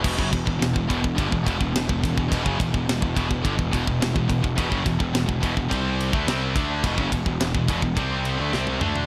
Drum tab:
CC |x---------------|----------------|----------------|----------------|
RD |--x-x-x-x-x-x-x-|x-x-x-x-x-x-x-x-|x-x-x-x-x-x-x-x-|x-x-x-x-x-x-----|
SD |----o-------o---|----o-------o---|----o-------o---|----o-------o---|
T1 |----------------|----------------|----------------|-------------o--|
T2 |----------------|----------------|----------------|--------------o-|
FT |----------------|----------------|----------------|---------------o|
BD |oooo-ooooooo-ooo|oooo-ooooooo-ooo|oooo-oooo--o--o-|oooo-oooo-------|